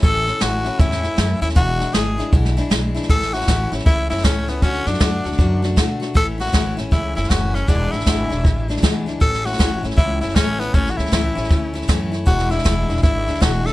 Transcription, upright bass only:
X:1
M:4/4
L:1/8
Q:"Swing" 1/4=157
K:A
V:1 name="Upright bass" clef=bass
A,,,2 A,,,2 E,,2 F,, ^D,, | E,,,2 G,,,2 B,,,2 B,,,2 | A,,,2 A,,, A,,, C,, F,,, C,,2 | D,, F,, F,, D,, F,,2 B,,2 |
A,,,2 A,,, A,,, C,, F,,, F,,,2 | E,,, G,,, G,,, E,,, A,,,2 z2 | A,,,2 A,,, A,,, C,, F,,, A,,,2 | A,,, C,, C,, A,,, D,,2 F,,2 |
E,,,2 E,,, E,,, G,,, D,, E,,,2 |]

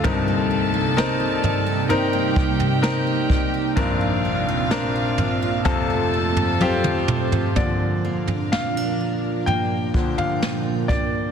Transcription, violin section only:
X:1
M:4/4
L:1/8
Q:1/4=64
K:Fmix
V:1 name="Violin section"
[Aa]4 [Gg]4 | [Ff]4 [Aa]4 | [K:Bblyd] z8 |]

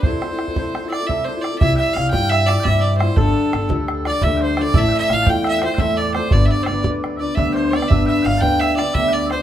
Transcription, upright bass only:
X:1
M:9/8
L:1/8
Q:3/8=115
K:C
V:1 name="Upright bass" clef=bass
z8 z | C,, z C,, G,,3 G,,3 | G,,, z G,,, D,,3 D,,3 | A,,, z A,,, E,,3 E,,3 |
G,,, z G,,, D,,3 D,,3 | G,,, z G,,, D,,3 D,,3 |]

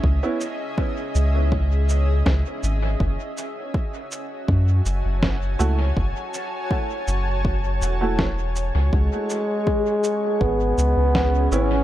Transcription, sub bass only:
X:1
M:4/4
L:1/16
Q:1/4=81
K:C#m
V:1 name="Sub bass" clef=bass
C,, z4 z C,,6 C,, z G,,,2 | F,,, z6 z F,,2 F,,, F,,,3 C,,2 | F,,, z4 z F,,,4 E,,,4- E,,, C,, | C,, z6 z G,,,2 C,, C,,3 G,,,2 |]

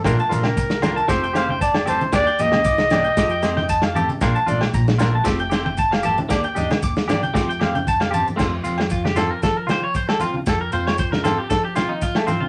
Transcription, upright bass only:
X:1
M:4/4
L:1/16
Q:1/4=115
K:Fmix
V:1 name="Upright bass" clef=bass
B,,, z B,,,2 C,,4 F,,,8 | E,, z E,,2 C,,4 F,,8 | B,,, z B,,,2 B,,,4 F,,,8 | E,, z E,,2 E,,4 F,,8 |
F,,2 F,,6 F,8 | F,,2 F,,6 F,8 |]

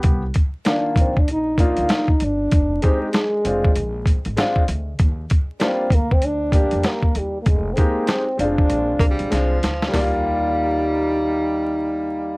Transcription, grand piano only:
X:1
M:4/4
L:1/16
Q:"Swing 16ths" 1/4=97
K:Eb
V:1 name="Grand piano"
[=B,G] z3 [E,_B,DF]2 z4 [B,DEF]2 z4 | z2 [A,CEG]2 z2 [A,CDF]2 z4 [A,CDF]2 z2 | z4 [G,B,DF]2 z4 [G,B,DG]2 z4 | z2 [A,CEG]2 z2 [G,A,CDF]6 [A,CDF]2 z2 |
[G,B,Fd]16 |]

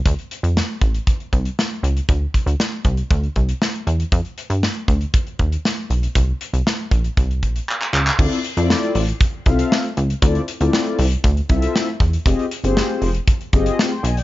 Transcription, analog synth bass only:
X:1
M:4/4
L:1/16
Q:1/4=118
K:Fmix
V:1 name="Analog synth bass" clef=bass
D,, z2 F,,2 z A,,,2 z2 C,,2 z2 ^C,,2 | D,,2 z D,, z2 C,,2 D,,2 C,,2 z2 =E,,2 | F,, z2 G,,2 z D,,2 z2 E,,2 z2 =B,,,2 | C,,2 z C,, z2 B,,,2 C,,2 B,,,2 z2 _D,,2 |
D,, z2 F,,2 z A,,,2 z2 C,,2 z2 ^C,,2 | D,,2 z D,, z2 C,,2 D,,2 C,,2 z2 =E,,2 | F,,, z2 G,,,2 z F,,,2 z2 G,,,2 z2 =B,,,2 |]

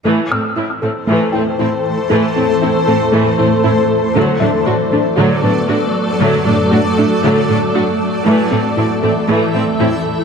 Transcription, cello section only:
X:1
M:4/4
L:1/8
Q:1/4=117
K:Ador
V:1 name="Cello section" clef=bass
A,, A,, A,, A,, A,, A,, A,, z | A,, A,, A,, A,, A,, A,, A,, z | A,, A,, A,, A,, A,, A,, A,, z | A,, A,, A,, A,, A,, A,, A,, z |
A,, A,, A,, A,, A,, A,, A,, z |]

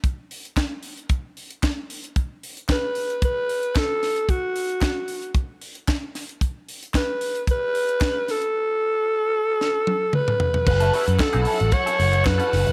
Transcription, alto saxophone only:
X:1
M:4/4
L:1/8
Q:1/4=113
K:F#phr
V:1 name="Alto saxophone"
z8 | z2 B2 B2 A2 | F4 z4 | z2 B2 B3 A- |
A6 B2 | B2 A2 c2 B2 |]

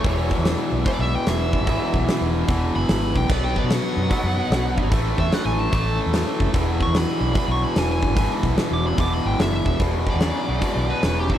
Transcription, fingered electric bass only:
X:1
M:4/4
L:1/16
Q:"Swing" 1/4=148
K:E
V:1 name="Fingered electric bass" clef=bass
E,,,3 E,,2 z B,,,2 z B,,,2 z E,,,3 G,,,- | G,,, z B,,,2 z E,,,3 E,,,2 F,,,2 G,,,2 B,,,2 | B,,,3 B,,2 z F,,2 z F,,2 z B,,,3 G,,, | A,,,2 E,,2 z A,,,3 A,,,3 E,,2 z F,,, z |
E,,,3 E,,2 z B,,,2 z B,,,2 z E,,,3 G,,,- | G,,, z B,,,2 z E,,,3 E,,,2 G,,,2 F,,,2 E,,,2 | E,,,3 E,,2 z B,,,2 z B,,,2 z E,,,3 z |]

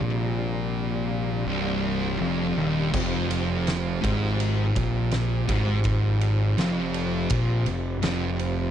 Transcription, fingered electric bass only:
X:1
M:4/4
L:1/8
Q:1/4=82
K:Fdor
V:1 name="Fingered electric bass" clef=bass
B,,,4 C,,,2 F,,, E,,, | F,,,3 A,,,2 B,,,2 A,,,- | A,,,2 F,,,2 B,,, F,,, F,,,2 |]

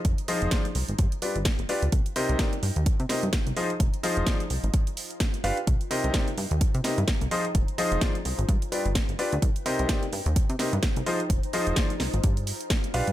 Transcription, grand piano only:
X:1
M:4/4
L:1/8
Q:"Swing 16ths" 1/4=128
K:Cm
V:1 name="Grand piano"
z [F,EFAce] [F,EFAcd] z2 [G,DFG=Bd] z [DFGBd] | z [C,EGBce] [C,EGBcd] z2 [C,EGBce] z [F,EFAce] | z [F,EFAce] [F,EFAcd] z4 [DFG=Bf] | z [C,EGBce] [C,EGBcd] z2 [C,EGBce] z [F,EFAce] |
z [F,EFAce] [F,EFAc] z2 [G,DFG=Bd] z [DFGBd] | z [C,EGBce] [C,EGBcd] z2 [C,EGBce] z [F,EFAce] | z [F,EFAce] [F,EFAcd] z4 [DFG=Bf] |]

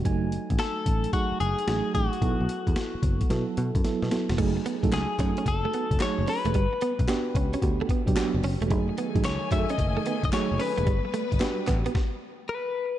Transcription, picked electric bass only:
X:1
M:4/4
L:1/16
Q:"Swing 16ths" 1/4=111
K:F#dor
V:1 name="Picked electric bass" clef=bass
F,,,3 A,,, z2 A,,,2 z2 F,,, z A,,, z A,,, z | B,,, B,,, z E,, z2 F,,,2 B,, z B,, F,, z B,, z E,,, | F,,,2 z A,,, C,, z F,, z F,,,2 z F,,, z F,,, z E,,, | =G,,, z2 B,,, z2 C,,2 =D,,2 z B,,, z F,,, F,,, E,,, |
F,,,2 z A,,, C,, z F,, z F,,,2 z F,,, z F,,, z E,,, | =G,,, z2 G,,, z2 A,,,2 z8 |]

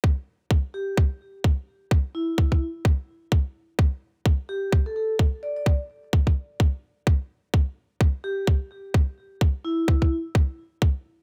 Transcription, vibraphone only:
X:1
M:4/4
L:1/16
Q:"Swing 16ths" 1/4=128
K:Em
V:1 name="Vibraphone"
z6 G2 z8 | z2 E4 z8 z2 | z6 G2 z A A z3 d d | z16 |
z6 G2 z8 | z2 E4 z8 z2 |]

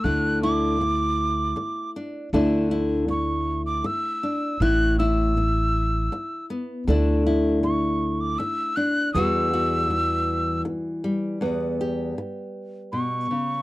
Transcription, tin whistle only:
X:1
M:3/4
L:1/16
Q:1/4=79
K:Edor
V:1 name="Tin whistle"
f'2 d'8 z2 | z4 c'3 d' e'4 | f'2 e'8 z2 | z4 c'3 d' e'2 f'2 |
e'8 z4 | z8 c'4 |]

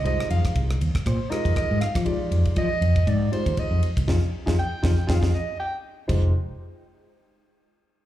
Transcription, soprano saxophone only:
X:1
M:4/4
L:1/8
Q:"Swing 16ths" 1/4=119
K:Fdor
V:1 name="Soprano saxophone"
e f z2 c e e f | z2 e2 d c e z | z2 g2 f e g z | z8 |]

